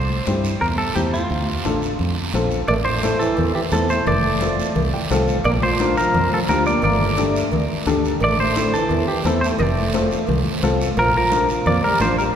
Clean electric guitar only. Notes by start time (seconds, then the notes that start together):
Already playing: C5
0.61 A#4
0.78 A4
0.95 G4
1.14 F4
2.68 D5
2.85 C5
3.19 A4
3.55 G4
3.73 A4
3.90 C5
4.08 D5
5.45 D5
5.63 C5
5.97 A#4
6.34 A4
6.49 A#4
6.67 D5
6.84 D5
8.24 D5
8.40 C5
8.74 A4
9.08 G4
9.26 A4
9.41 C5
9.59 D5
10.99 A#4
11.17 A#4
11.67 D5
11.84 A#4
12.01 C5
12.18 A#4